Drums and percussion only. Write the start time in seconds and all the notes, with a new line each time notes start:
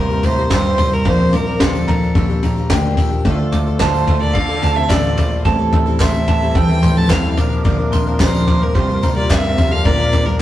0.09 tambourine
0.23 floor tom, tambourine
0.50 kick, snare, clap, floor tom, tambourine
0.65 tambourine
0.78 floor tom, tambourine
1.05 kick, floor tom, tambourine
1.21 tambourine
1.33 floor tom, tambourine
1.60 kick, snare, clap, floor tom, tambourine
1.75 tambourine
1.88 floor tom, tambourine
2.02 tambourine
2.15 kick, floor tom, tambourine
2.30 tambourine
2.43 floor tom, tambourine
2.57 tambourine
2.70 kick, snare, clap, floor tom, tambourine
2.85 tambourine
2.97 floor tom, tambourine
3.12 tambourine
3.25 kick, floor tom, tambourine
3.52 floor tom, tambourine
3.66 tambourine
3.80 kick, snare, clap, floor tom, tambourine
3.94 tambourine
4.07 floor tom
4.22 tambourine
4.35 kick, floor tom
4.49 tambourine
4.62 floor tom, tambourine
4.77 tambourine
4.90 kick, snare, clap, floor tom, tambourine
5.04 tambourine
5.17 floor tom, tambourine
5.31 tambourine
5.45 kick, floor tom, tambourine
5.73 floor tom
5.87 tambourine
6.00 kick, snare, clap, floor tom, tambourine
6.14 tambourine
6.28 floor tom, tambourine
6.42 tambourine
6.55 kick, floor tom
6.69 tambourine
6.83 floor tom, tambourine
6.97 tambourine
7.10 kick, snare, clap, floor tom, tambourine
7.24 tambourine
7.37 floor tom, tambourine
7.52 tambourine
7.65 kick, floor tom, tambourine
7.93 floor tom, tambourine
8.07 tambourine
8.20 kick, snare, clap, floor tom, tambourine
8.35 tambourine
8.48 floor tom, tambourine
8.62 tambourine
8.75 kick, floor tom
8.90 tambourine
9.03 floor tom, tambourine
9.17 tambourine
9.29 kick, snare, clap, floor tom, tambourine
9.44 tambourine
9.58 floor tom, tambourine
9.71 tambourine
9.85 kick, floor tom, tambourine
9.99 tambourine
10.12 floor tom, tambourine
10.26 tambourine